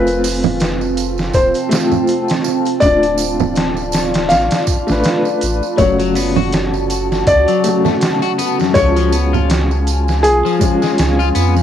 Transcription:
Already playing: sub bass F1, upright piano A3 C4 F4, ambient pad C4 F4 A5, felt piano B4
0.07 closed hi-hat, tambourine
0.24 open hi-hat, tambourine
0.44 tambourine, low conga
0.60 snare, closed hi-hat, tambourine
0.81 tambourine
0.97 closed hi-hat, tambourine
1.18 snare, tambourine
1.33 sub bass D1, felt piano C5, kick, closed hi-hat, tambourine
1.54 closed hi-hat, tambourine
1.69 upright piano A3 C4, snare, closed hi-hat, tambourine
1.74 upright piano F4
1.92 tambourine, low conga
2.07 closed hi-hat, tambourine
2.28 snare, closed hi-hat, tambourine
2.44 tambourine
2.65 closed hi-hat, tambourine
2.80 sub bass D1, upright piano A3 D4, ambient pad F4 D5, felt piano D5, kick, closed hi-hat, tambourine
2.85 upright piano F4
3.03 closed hi-hat, tambourine
3.18 closed hi-hat, tambourine
3.40 tambourine, low conga
3.55 snare, closed hi-hat, tambourine
3.77 tambourine
3.92 snare, closed hi-hat, tambourine
4.14 snare, closed hi-hat, tambourine
4.29 sub bass A1, felt piano F5, snare, closed hi-hat, tambourine
4.51 snare, closed hi-hat, tambourine
4.67 kick, closed hi-hat, tambourine
4.87 sub bass A1, upright piano A3 D4, snare, tambourine
4.92 upright piano B4
5.04 snare, closed hi-hat, tambourine
5.25 tambourine
5.41 sub bass A1, closed hi-hat, tambourine
5.63 tambourine
5.77 sub bass F#1, upright piano C#3 A3, clean electric guitar F#3, ambient pad F#4 A5, felt piano C#5, kick, closed hi-hat, tambourine
5.82 upright piano F#4
6.00 clean electric guitar F#3, closed hi-hat, tambourine
6.15 clean electric guitar B3, open hi-hat, tambourine
6.36 clean electric guitar F#4, tambourine, low conga
6.52 snare, closed hi-hat, tambourine
6.74 tambourine
6.90 closed hi-hat, tambourine
7.12 snare, tambourine
7.27 sub bass C#2, felt piano D5, kick, closed hi-hat, tambourine
7.48 clean electric guitar F#3, closed hi-hat, tambourine
7.64 upright piano C#3 A3, closed hi-hat, tambourine
7.68 upright piano F#4
7.85 clean electric guitar A3, snare, tambourine, low conga
8.01 snare, closed hi-hat, tambourine
8.22 clean electric guitar F#4, closed hi-hat, tambourine
8.38 clean electric guitar B3, closed hi-hat, tambourine
8.59 clean electric guitar F#2, snare, tambourine
8.73 sub bass C#2, clean electric guitar F3, upright piano G#3 C#4, ambient pad F4, felt piano C#5, kick, closed hi-hat, tambourine
8.77 upright piano F4, ambient pad G#5
8.96 clean electric guitar F3, closed hi-hat, tambourine
9.12 clean electric guitar B3, closed hi-hat, tambourine
9.33 clean electric guitar F4, tambourine, low conga
9.50 snare, closed hi-hat, tambourine
9.71 tambourine
9.87 closed hi-hat, tambourine
10.08 snare, tambourine
10.23 sub bass B1, felt piano G#4, closed hi-hat, tambourine
10.45 clean electric guitar F3, tambourine
10.59 upright piano G#3 C#4, kick, closed hi-hat, tambourine
10.63 upright piano F4
10.82 clean electric guitar G#3, snare, tambourine
10.98 sub bass C#2, snare, closed hi-hat, tambourine
11.19 clean electric guitar F4, tambourine
11.35 sub bass F2, clean electric guitar B3, closed hi-hat, tambourine
11.55 clean electric guitar F2, tambourine

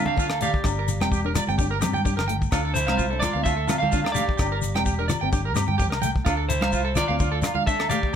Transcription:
Already playing: fingered electric bass D3
0.06 clean electric guitar A4 F5, high conga, low conga
0.16 nylon-string guitar D4, clean electric guitar F4, kick, shekere
0.30 fingered electric bass D2, clean electric guitar A4, cross-stick, low agogo
0.41 nylon-string guitar A3, clean electric guitar G4 D5 F5, closed hi-hat, low conga, shekere
0.54 kick
0.64 fingered electric bass G1, nylon-string guitar D4, muted clean electric guitar stroke, kick, cross-stick, low agogo, shekere
0.79 clean electric guitar A#4
0.88 closed hi-hat, shekere
1.01 fingered electric bass E1, nylon-string guitar C4, clean electric guitar G5, cross-stick, high conga, low agogo, shekere
1.12 clean electric guitar G4, kick, shekere
1.24 nylon-string guitar D4, clean electric guitar A#4
1.34 nylon-string guitar F4, clean electric guitar D5, cross-stick, closed hi-hat, high conga, low conga, low agogo, shekere
1.47 fingered electric bass G1, nylon-string guitar C4, clean electric guitar G5, high conga, shekere
1.58 nylon-string guitar D4, clean electric guitar G4, kick, shekere
1.71 clean electric guitar A#4
1.81 fingered electric bass G2, nylon-string guitar C4, clean electric guitar G4, cross-stick, closed hi-hat, high conga, low agogo, shekere
1.94 clean electric guitar G5, high conga, low conga, shekere
2.05 nylon-string guitar D4, clean electric guitar G4, kick, shekere
2.17 fingered electric bass G1, clean electric guitar A#4, cross-stick, low agogo
2.28 nylon-string guitar A3, clean electric guitar G5, closed hi-hat, low conga
2.42 kick, shekere
2.51 fingered electric bass D2, clean electric guitar D4 F4 A4, nylon-string guitar D4, kick, cross-stick, low agogo, shekere
2.65 clean electric guitar A4
2.74 clean electric guitar E4 C5, closed hi-hat, shekere
2.87 fingered electric bass C2, nylon-string guitar C4, clean electric guitar F5, cross-stick, high conga, low agogo
2.97 clean electric guitar F4, kick, shekere
3.10 nylon-string guitar D4, clean electric guitar A4
3.20 clean electric guitar F4 D5, nylon-string guitar F4, cross-stick, closed hi-hat, high conga, low conga, low agogo, shekere
3.33 fingered electric bass D2, nylon-string guitar C4, clean electric guitar F5
3.44 nylon-string guitar D4, clean electric guitar F4 A4 E5, kick, shekere
3.57 clean electric guitar A4
3.67 fingered electric bass D3, nylon-string guitar C4, clean electric guitar F4, cross-stick, closed hi-hat, high conga, low agogo, shekere
3.78 clean electric guitar A4 F5
3.83 high conga, low conga
3.91 nylon-string guitar D4, clean electric guitar F4, kick, shekere
4.04 fingered electric bass D2, clean electric guitar A4, cross-stick, low agogo
4.12 clean electric guitar G4 D5 F5, shekere
4.16 nylon-string guitar A3, closed hi-hat, low conga
4.29 kick
4.37 fingered electric bass G1, clean electric guitar G4, kick, cross-stick, low agogo, shekere
4.42 nylon-string guitar D4
4.52 clean electric guitar A#4
4.62 closed hi-hat, shekere
4.75 fingered electric bass E1, nylon-string guitar C4, clean electric guitar G5, cross-stick, high conga, low agogo
4.86 clean electric guitar G4, kick, shekere
4.99 nylon-string guitar D4, clean electric guitar A#4
5.08 nylon-string guitar F4, clean electric guitar D5, cross-stick, closed hi-hat, high conga, low conga, low agogo, shekere
5.21 fingered electric bass G1, nylon-string guitar C4, clean electric guitar G5
5.32 nylon-string guitar D4, clean electric guitar G4, kick, shekere
5.45 clean electric guitar A#4
5.55 fingered electric bass G2, nylon-string guitar C4, clean electric guitar G4, cross-stick, closed hi-hat, high conga, low agogo, shekere
5.68 clean electric guitar G5, high conga, low conga
5.78 clean electric guitar G4, muted nylon-string guitar stroke, kick, shekere
5.90 fingered electric bass C2, clean electric guitar A#4, cross-stick, low agogo
6.02 nylon-string guitar A3, clean electric guitar G5, closed hi-hat, low conga, shekere
6.16 kick
6.25 fingered electric bass D2, clean electric guitar D4 F4 A4, nylon-string guitar D4, kick, cross-stick, low agogo, shekere
6.37 clean electric guitar A4
6.49 clean electric guitar E4 C5, closed hi-hat, shekere
6.61 fingered electric bass C2, clean electric guitar F5, cross-stick, high conga, low agogo
6.72 clean electric guitar F4, kick, shekere
6.85 clean electric guitar A4
6.95 nylon-string guitar F4, clean electric guitar F4 D5, cross-stick, closed hi-hat, high conga, low conga, low agogo, shekere
7.08 fingered electric bass D2, nylon-string guitar C4, clean electric guitar F5
7.19 nylon-string guitar D4, clean electric guitar F4, kick, shekere
7.32 clean electric guitar A4
7.42 fingered electric bass D3, clean electric guitar F4, cross-stick, closed hi-hat, high conga, low agogo, shekere
7.55 clean electric guitar F5, high conga, low conga
7.66 nylon-string guitar D4, clean electric guitar A4 E5, muted clean electric guitar stroke, kick, shekere
7.79 fingered electric bass D2, clean electric guitar A4, cross-stick, low agogo
7.89 nylon-string guitar A3, clean electric guitar G4 D5 F5, closed hi-hat, low conga, shekere
8.03 kick

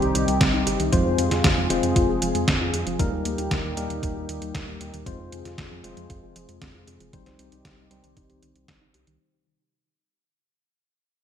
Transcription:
Already playing: analog synth pad C3 D#3 G3 D#4 G4, tine electric piano G3 C4 D#4 C5
0.02 analog synth bass C2, synth arpeggio sound G4, closed hi-hat
0.15 analog synth bass C2, synth arpeggio sound D#3, closed hi-hat
0.28 analog synth bass C2, synth arpeggio sound G3, closed hi-hat
0.41 analog synth bass C2, synth arpeggio sound C4, kick, snare, closed hi-hat
0.54 analog synth bass C2, synth arpeggio sound D#4
0.67 analog synth bass G1, synth arpeggio sound G4, closed hi-hat
0.80 analog synth bass C2, synth arpeggio sound D#3, closed hi-hat
0.92 analog synth bass F2, analog synth pad F3 G#3 F4 G#4, synth arpeggio sound F3, tine electric piano G#3 C4 F4 C5, kick, closed hi-hat
1.06 analog synth bass F2, synth arpeggio sound C5
1.18 analog synth bass F2, synth arpeggio sound C4, closed hi-hat
1.31 analog synth bass F2, synth arpeggio sound F4, snare, closed hi-hat
1.44 analog synth bass F2, synth arpeggio sound G#4, kick, snare, closed hi-hat
1.57 analog synth bass F2, synth arpeggio sound F3
1.70 analog synth bass F1, synth arpeggio sound G#3, tine electric piano G#3 C4 F4 C5, closed hi-hat
1.83 analog synth bass F2, synth arpeggio sound F3, closed hi-hat
1.96 analog synth bass F2, synth arpeggio sound F4, kick, closed hi-hat
2.09 analog synth bass F1, synth arpeggio sound G#4
2.22 analog synth bass F1, synth arpeggio sound F3, closed hi-hat
2.35 analog synth bass F2, synth arpeggio sound G#3, closed hi-hat
2.48 analog synth bass F2, synth arpeggio sound C4, kick, snare, closed hi-hat
2.61 analog synth bass F2, synth arpeggio sound F4
2.74 analog synth bass F2, synth arpeggio sound G#4, closed hi-hat
2.87 analog synth bass F1, synth arpeggio sound F3, closed hi-hat
2.99 analog synth bass D#2, analog synth pad A#2 D#3 G3 D#4 G4, synth arpeggio sound D#3, tine electric piano G3 A#3 D#4 A#4, kick, closed hi-hat
3.12 analog synth bass D#2, synth arpeggio sound A#4
3.25 analog synth bass D#2, synth arpeggio sound A#3, closed hi-hat
3.38 analog synth bass D#2, synth arpeggio sound D#4, closed hi-hat
3.51 analog synth bass D#2, synth arpeggio sound G4, kick, snare, closed hi-hat
3.64 analog synth bass D#2, synth arpeggio sound D#3
3.77 analog synth bass D#2, tine electric piano G3 A#3 D#4 A#4, synth arpeggio sound G3, closed hi-hat
3.90 analog synth bass D#2, synth arpeggio sound D#3, closed hi-hat
4.03 analog synth bass D#2, synth arpeggio sound D#4, kick, closed hi-hat
4.16 analog synth bass D#2, synth arpeggio sound G4
4.29 analog synth bass D#2, synth arpeggio sound D#3, closed hi-hat
4.42 analog synth bass D#2, synth arpeggio sound G3, closed hi-hat
4.55 analog synth bass D#2, synth arpeggio sound A#3, kick, snare, closed hi-hat
4.68 analog synth bass D#2, synth arpeggio sound D#4
4.81 analog synth bass D#2, synth arpeggio sound G4, closed hi-hat
4.93 analog synth bass D#2, synth arpeggio sound D#3, closed hi-hat
5.06 analog synth bass F2, analog synth pad C3 F3 G#3 F4 G#4, synth arpeggio sound F3, tine electric piano G#3 C4 F4 C5, kick, closed hi-hat
5.19 analog synth bass F2, synth arpeggio sound C5
5.32 analog synth bass F2, synth arpeggio sound C4, closed hi-hat
5.45 analog synth bass F2, synth arpeggio sound F4, snare, closed hi-hat
5.58 analog synth bass F2, synth arpeggio sound G#4, kick, snare, closed hi-hat
5.71 analog synth bass F2, synth arpeggio sound F3
5.84 analog synth bass F1, tine electric piano G#3 C4 F4 C5, synth arpeggio sound G#3, closed hi-hat
5.97 analog synth bass F2, synth arpeggio sound F3, closed hi-hat
6.10 analog synth bass F2, synth arpeggio sound F4, kick, closed hi-hat
6.23 analog synth bass F1, synth arpeggio sound G#4
6.36 analog synth bass F1, synth arpeggio sound F3, closed hi-hat
6.49 analog synth bass F2, synth arpeggio sound G#3, closed hi-hat
6.62 analog synth bass F2, synth arpeggio sound C4, kick, snare, closed hi-hat
6.75 analog synth bass F2, synth arpeggio sound F4
6.88 analog synth bass F2, synth arpeggio sound G#4, closed hi-hat
7.00 analog synth bass F1, synth arpeggio sound F3, closed hi-hat
7.13 analog synth bass C2, analog synth pad C3 D#3 G3 D#4 G4, synth arpeggio sound D#3, tine electric piano G3 C4 D#4 C5, kick, closed hi-hat
7.26 analog synth bass C2, synth arpeggio sound C5, snare, closed hi-hat
7.39 analog synth bass C2, synth arpeggio sound C4, closed hi-hat
7.52 analog synth bass C2, synth arpeggio sound D#4, closed hi-hat
7.65 analog synth bass C2, synth arpeggio sound G4, kick, snare, closed hi-hat
7.78 analog synth bass C2, synth arpeggio sound D#3
7.91 analog synth bass C2, tine electric piano G3 C4 D#4 C5, synth arpeggio sound G3, closed hi-hat
8.04 analog synth bass C2, synth arpeggio sound D#3, closed hi-hat
8.17 analog synth bass C2, synth arpeggio sound D#4, kick, closed hi-hat
8.30 analog synth bass C2, synth arpeggio sound G4, closed hi-hat
8.43 analog synth bass C2, synth arpeggio sound D#3, closed hi-hat
8.55 analog synth bass C2, synth arpeggio sound G3, closed hi-hat
8.68 analog synth bass C2, synth arpeggio sound C4, kick, snare, closed hi-hat
8.81 analog synth bass G1, synth arpeggio sound D#4
8.94 analog synth bass C2, synth arpeggio sound G4, closed hi-hat
9.07 analog synth bass C2, synth arpeggio sound D#3, closed hi-hat

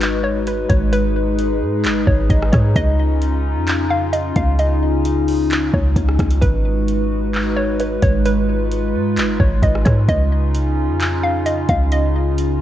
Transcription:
Already playing: 808-style bass G#1, ambient pad G#3 D#4 F#4 B4
0.01 clap, closed hi-hat
0.24 synth pluck C#5
0.47 synth pluck B4, closed hi-hat
0.69 808-style bass G#1, synth pluck C#5, kick, closed hi-hat
0.93 ambient pad G#4, synth pluck B4, closed hi-hat
1.39 closed hi-hat
1.61 808-style bass G#2
1.84 808-style bass G#1, clap, closed hi-hat
2.07 808-style bass G#1, synth pluck C#5, kick
2.30 808-style bass G#1, synth pluck D#5, kick, closed hi-hat
2.42 cross-stick
2.52 808-style bass G#2, synth pluck C#5, kick, cross-stick, closed hi-hat
2.76 808-style bass C#2, ambient pad C#3 C#4 F4, synth pluck D#5, kick, closed hi-hat
3.22 closed hi-hat
3.56 808-style bass F2
3.68 clap, closed hi-hat
3.90 synth pluck F5
4.13 synth pluck D#5, closed hi-hat
4.36 808-style bass C#2, synth pluck F5, kick, closed hi-hat
4.59 synth pluck D#5, closed hi-hat
5.05 closed hi-hat
5.28 open hi-hat
5.51 clap, closed hi-hat
5.74 808-style bass C#2, synth pluck C#5, kick
5.96 808-style bass C#2, kick, closed hi-hat
6.09 cross-stick
6.19 808-style bass C#2, kick, cross-stick, closed hi-hat
6.31 closed hi-hat
6.42 808-style bass G#1, ambient pad G#3 F#4 B4, synth pluck B4, kick, closed hi-hat
6.88 closed hi-hat
7.34 clap, closed hi-hat
7.56 synth pluck C#5
7.80 synth pluck B4, closed hi-hat
8.02 808-style bass G#1, synth pluck C#5, kick, closed hi-hat
8.25 ambient pad F4, synth pluck B4, closed hi-hat
8.71 closed hi-hat
8.94 808-style bass G#2
9.17 808-style bass G#1, clap, closed hi-hat
9.40 808-style bass G#1, synth pluck C#5, kick
9.63 808-style bass G#1, synth pluck D#5, kick, closed hi-hat
9.75 cross-stick
9.85 808-style bass G#2, synth pluck C#5, kick, cross-stick, closed hi-hat
10.09 808-style bass C#2, ambient pad C#3 C#4 D#4 F4, synth pluck D#5, kick, closed hi-hat
10.55 closed hi-hat
10.89 808-style bass F2
11.00 clap, closed hi-hat
11.23 synth pluck F5
11.46 synth pluck D#5, closed hi-hat
11.69 808-style bass C#2, synth pluck F5, kick, closed hi-hat
11.92 synth pluck D#5, closed hi-hat
12.38 closed hi-hat

